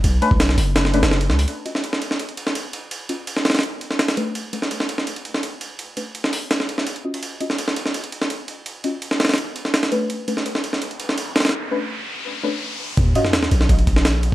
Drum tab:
RD |x---x---x-------x---x-x---x-----|x---x---x---x---x-x-x---x---x---|x---x---x---xxxxx---x---x-x-x---|x---x---x---x---x-x-x---x---x---|
HH |------------o-----------------o-|--------------------------------|--------------------------------|--------------------------------|
SD |--------o-o-----o-o---o-o---o---|------o---o---o-------o---------|----------o-oooo------o-o-o-----|------o---o---o-------o---------|
BD |------o-------------------------|--------------------------------|--------------------------------|--------------------------------|

RD |x---x---x-------x---x---x-x---x-|x---x---x---x---x-x-x---x---x---|x---x---x---xxxxx---x---x-x-x---|x---x---x---x---x-x-x---x---xxxx|
HH |------------o-------------------|--------------------------------|--------------------------------|--------------------------------|
SD |----------o-----o-o---o---------|------o---o---o-------o---------|----------o-oooo------o-o-o-----|------o---o---o-------o-----oooo|
BD |--------------------------------|--------------------------------|--------------------------------|--------------------------------|

RD |--------------------------------|x---x---x---x---x-x-x---x---x---|
HH |--------------------------------|--------------------------------|
SD |--------------------------------|------o-o-o---o-------o-o-------|
BD |--------------------------------|o---------------o---o-----------|